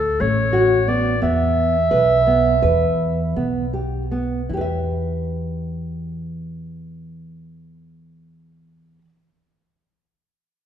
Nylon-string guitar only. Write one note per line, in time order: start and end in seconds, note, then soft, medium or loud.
0.20 0.46 A3 medium
0.53 0.79 F#4 medium
0.88 1.14 B3 medium
1.22 1.75 B3 medium
1.91 2.18 B4 medium
2.27 2.54 B3 medium
2.62 3.18 B4 medium
3.36 3.64 B3 medium
3.73 4.02 G4 soft
4.11 4.40 B3 soft
4.49 4.61 E4 soft
4.53 9.01 G4 soft
4.53 9.05 B4 soft
4.61 9.09 E5 soft